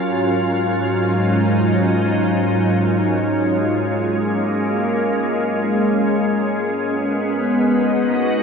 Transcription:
Already playing: F#3 C#4 F4 G#4 A#4
0.04 G#2
0.74 D#4
3.22 G#3
3.93 A#3
6.78 B3
7.64 D#4
7.82 F#4

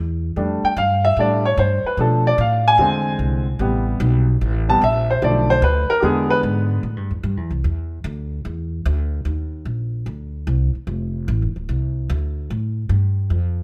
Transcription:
Already playing: E2
0.36 F2 G3 A3 D4
0.63 G5, muted upright bass stroke
0.77 G2 F5
1.05 E5
1.17 A2 G3 A3 D4 D5
1.46 C#5
1.57 G2 C5
1.84 B4, muted upright bass stroke
1.97 B2 F3 A3 D4 A4
2.27 D5
2.38 A2 F5
2.68 G#5
2.78 E2 D3 G#3 C4
3.19 C2
3.59 A1 C3 G3 B3
4.00 B1
4.41 A1
4.69 C3 G3 B3 A5
4.81 A#1 E5
5.10 C5
5.22 B1 D3 F3 A3 D5
5.50 C5
5.62 D2 B4
5.90 A#4
6.00 E2 D3 G#3 B3 G4
6.05 G#4
6.30 B4
6.43 G#2
6.83 A2
6.96 G2
7.11 E2
7.23 G2
7.37 E2
7.50 C2
7.64 E2
8.04 D2
8.45 E2
8.85 D2
9.25 D#2
9.65 A#1
10.06 D2
10.47 C2
10.75 muted upright bass stroke
10.87 F1
11.28 A1
11.42 F1
11.56 D1
11.69 C2
12.10 D2
12.50 A2
12.89 G2
13.30 F2

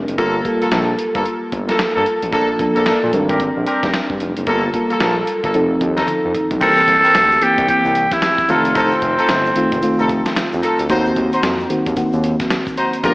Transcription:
Already playing: G3 C4 D4 A#4
0.08 F#1, closed hi-hat
0.18 G1 G3 A#3 F4 A4, kick, closed hi-hat
0.45 G3 A#3 F4 A4, kick, closed hi-hat
0.61 A#1 A#3 F4 A4, closed hi-hat
0.71 A#1 A#3 F4 A4, snare, closed hi-hat
0.99 closed hi-hat
1.14 G1 A#3 F4 A4, kick, closed hi-hat
1.26 closed hi-hat
1.52 G1, kick, closed hi-hat
1.68 A#3 F4 A4, snare, closed hi-hat
1.79 snare, closed hi-hat
1.95 G2 A#3 F4 A4
2.06 closed hi-hat
2.22 A1, closed hi-hat
2.32 A#1 F3 A#3 D4 A4, kick, closed hi-hat
2.59 F3 A#3 D4 A4, kick, closed hi-hat
2.76 A#1 A#3 D4 A4, closed hi-hat
2.86 A#2 A#3 D4 A4, snare, closed hi-hat
3.03 A#2
3.13 G#1 G3 C4 D4 A#4, closed hi-hat
3.29 C4 D4 G4 A#4, kick, closed hi-hat
3.40 kick, closed hi-hat
3.57 A#1
3.66 C4 D4 G4 A#4, closed hi-hat
3.83 F1, kick, snare, closed hi-hat
3.94 snare, closed hi-hat
4.10 G1, kick
4.20 F1, closed hi-hat
4.37 F#1, closed hi-hat
4.47 G1 G3 A#3 F4 A4, kick, closed hi-hat
4.74 G3 A#3 F4 A4, kick, closed hi-hat
4.90 A#1 A#3 F4 A4, closed hi-hat
5.00 A#1 A#3 F4 A4, snare, closed hi-hat
5.27 closed hi-hat
5.43 G1 A#3 F4 A4, kick, closed hi-hat
5.54 F1 F3 C4 D#4 A4, closed hi-hat
5.81 D#2, kick, closed hi-hat
5.97 D#4 F4 A4, snare, closed hi-hat
6.08 closed hi-hat, high tom
6.25 F2
6.34 closed hi-hat, mid tom
6.51 B1, closed hi-hat, floor tom
6.61 C2 E3 A#3 C4 E4 F#4 A4 A#4, kick, closed hi-hat, crash, shaker
6.68 G4
6.77 shaker
6.88 C2, kick, closed hi-hat
7.04 C4 E4 A#4, closed hi-hat, shaker
7.15 D2, snare, closed hi-hat, shaker
7.31 shaker
7.41 E3 A#3 C4 G4, closed hi-hat
7.58 C2, kick, closed hi-hat, shaker
7.68 C2 E3 A#3 C4 G4, kick, closed hi-hat, shaker
7.85 C2, shaker
7.95 closed hi-hat, shaker
8.11 E4, kick, snare, closed hi-hat, shaker
8.22 snare, closed hi-hat, shaker
8.38 kick, shaker
8.48 F1 D#3 A3 C4 D#4 F4 A4, closed hi-hat, shaker
8.65 closed hi-hat, shaker
8.75 C4 D#4 F4 A4, kick, closed hi-hat, shaker
8.92 shaker
9.02 F1, kick, closed hi-hat
9.18 D#4 F4 A4, closed hi-hat, shaker
9.29 G1, snare, closed hi-hat, shaker
9.45 shaker
9.55 D#3 A3 C4 F4, closed hi-hat
9.72 F1, kick, closed hi-hat, shaker
9.82 D#3 A3 C4 F4, closed hi-hat, shaker
9.99 F1 D#4 F4 A4, shaker
10.09 kick, closed hi-hat, shaker
10.26 snare, closed hi-hat, shaker
10.36 snare, closed hi-hat, shaker
10.52 F2, shaker
10.63 D#4 F4 A4, closed hi-hat, shaker
10.79 D2, closed hi-hat, shaker
10.89 D#2 D#3 A#3 C4 D#4 F#4 C5, kick, closed hi-hat, shaker
11.05 shaker
11.16 D#2, kick, closed hi-hat
11.32 D#4 F#4 C5, closed hi-hat, shaker
11.43 F2, snare, closed hi-hat, shaker
11.59 shaker
11.70 D#3 A#3 C4 F#4, closed hi-hat
11.86 D#2, kick, closed hi-hat, shaker
11.96 D#2 D#3 A#3 C4 F#4, kick, closed hi-hat, shaker
12.13 D#2, shaker
12.23 closed hi-hat, shaker
12.40 kick, snare, closed hi-hat, shaker
12.50 snare, closed hi-hat, shaker
12.67 kick, shaker
12.77 D#4 F#4 C5, closed hi-hat, shaker
12.93 closed hi-hat, shaker
13.03 G1 F3 A#3 D4 F4 G4 A#4, kick, closed hi-hat, shaker

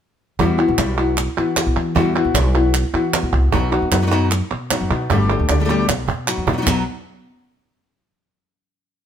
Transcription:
0.39 E2 E3 G3 B3 E4 F#4, cajon bass
0.58 B3 E4 F#4
0.68 B1
0.78 B1 G3 B3 E4 F#4, cajon slap, clap
0.98 B3 E4 F#4
1.17 muted nylon-string guitar stroke, clap
1.37 E3 B3 E4 F#4, clap
1.57 cajon slap, clap
1.66 B1
1.76 E3, clap
1.95 E2 E3 G3 B3 E4 F#4, cajon bass
2.15 B3 E4 F#4
2.25 B1
2.34 B1 G3 B3 E4 F#4, cajon slap, clap
2.54 B3 E4 F#4
2.74 muted nylon-string guitar stroke, clap
2.93 E3 B3 E4 F#4, cajon slap, clap
3.13 cajon slap, clap
3.23 B1
3.33 C2, clap
3.52 B1 B2 F#3 B3 D#4 F#4, cajon bass, clap
3.72 B3 D#4 F#4
3.82 F#2
3.91 F#2 B3 D#4 F#4, cajon slap, clap
4.02 F#3 B3 D#4 F#4
4.07 F#3 B3 D#4 F#4
4.11 B2 F#3 B3 D#4 F#4
4.31 muted nylon-string guitar stroke, clap
4.51 B2
4.70 F#3 B3 D#4 F#4, cajon slap, clap
4.81 F#2
4.90 B2 B3 D#4 F#4, clap
5.10 G1 B2 G3 A3 D4 G4, cajon bass, clap
5.30 A3 D4 G4
5.39 D2
5.49 D2 A3 D4 G4, cajon slap, clap
5.60 G3 A3 D4 G4
5.65 G3 A3 D4 G4
5.69 B2 G3 A3 D4 G4
5.88 B1, muted nylon-string guitar stroke, cajon slap, clap
6.08 B2, cajon bass, clap
6.27 F#3 B3 D#4 F#4, clap
6.38 F#2
6.47 B2 B3 D#4 F#4, cajon bass
6.53 F#3 B3 D#4 F#4
6.58 F#3 B3 D#4 F#4
6.62 F#3 B3 D#4 F#4
6.66 B1 B2 F#3 B3 D#4 F#4, cajon bass, clap

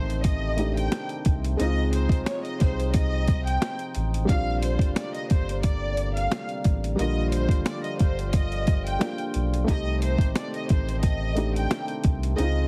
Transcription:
Already playing: A1 C3 D#3 A3 C4 D#4 G4 C5
0.10 closed hi-hat
0.23 D#5, kick, closed hi-hat
0.56 A3 D4 D#4 G4, closed hi-hat
0.77 G5, closed hi-hat
0.92 snare, closed hi-hat
1.09 closed hi-hat
1.25 C2, kick, closed hi-hat
1.44 closed hi-hat
1.57 C#2 C3 F3 G#3 C4 D#4 D#5, closed hi-hat
1.63 F4
1.93 C5, closed hi-hat
2.09 C2, kick, closed hi-hat
2.26 C#5, snare, closed hi-hat
2.44 D#5, closed hi-hat
2.60 C2 C5, kick, snare, closed hi-hat
2.80 closed hi-hat
2.94 D#5, kick, closed hi-hat
3.27 kick, closed hi-hat
3.45 G5, closed hi-hat
3.62 snare, closed hi-hat
3.79 closed hi-hat
3.95 A1, closed hi-hat
4.14 closed hi-hat
4.25 C3 D3 G3 A#3 C4 D4, kick
4.29 A#1 F4 F5, closed hi-hat
4.62 C5, closed hi-hat
4.79 G1, kick, closed hi-hat
4.96 D5, snare, closed hi-hat
5.14 D#5, closed hi-hat
5.30 G1 C5, kick, closed hi-hat
5.49 closed hi-hat
5.63 D5, kick, closed hi-hat
5.97 closed hi-hat
6.15 F5, closed hi-hat
6.32 snare, closed hi-hat
6.49 closed hi-hat
6.64 A1, kick, closed hi-hat
6.84 closed hi-hat
6.95 A#1 D3 F3 G3 A#3 F4 D#5, closed hi-hat
7.01 F4
7.32 C5, closed hi-hat
7.49 G1, kick, closed hi-hat
7.66 D5, snare, closed hi-hat
7.84 D#5, closed hi-hat
7.99 G1 C5, kick, closed hi-hat
8.19 closed hi-hat
8.32 D#5, kick, closed hi-hat
8.52 closed hi-hat
8.67 kick, closed hi-hat
8.87 G5, closed hi-hat
8.99 G3 A#3 D4 F4, snare, closed hi-hat
9.18 closed hi-hat
9.34 B1, closed hi-hat
9.54 closed hi-hat
9.64 C3 D#3 A3 C4 D#4, kick
9.68 C2 G4 D#5, closed hi-hat
10.02 C5, closed hi-hat
10.18 A1, kick, closed hi-hat
10.35 D5, snare, closed hi-hat
10.54 D#5, closed hi-hat
10.69 A1 C5, kick, closed hi-hat
10.89 closed hi-hat
11.02 D#5, kick, closed hi-hat
11.35 A3 D4 D#4 G4, closed hi-hat
11.55 G5, closed hi-hat
11.71 snare, closed hi-hat
11.88 closed hi-hat
12.04 C2, kick, closed hi-hat
12.23 closed hi-hat
12.36 C#2 C3 F3 G#3 C4 D#4 D#5, closed hi-hat
12.42 F4

